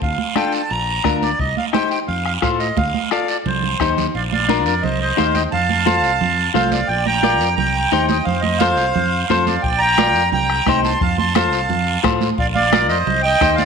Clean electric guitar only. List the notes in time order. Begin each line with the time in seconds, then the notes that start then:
0.36 D4 F4 A4
1.04 D4 F4 A#4
1.73 D#4 G4 C5
2.42 F4 A4 C5
3.12 F4 A4 D5
3.81 D#4 G4 C5
4.49 D4 F4 A#4
5.17 D#4 G4 C5
5.86 F4 A4 C5
6.54 F4 A4 C5
7.23 F4 A#4 D5
7.92 D#4 G4 C5
8.61 F4 A4 C5
9.30 F4 A4 C5
9.98 F4 A#4 D5
10.68 D#4 G4 C5
11.36 F4 A4 C5
12.04 F4 A4 C5
12.72 F4 A#4 D5
13.41 D#4 G4 C5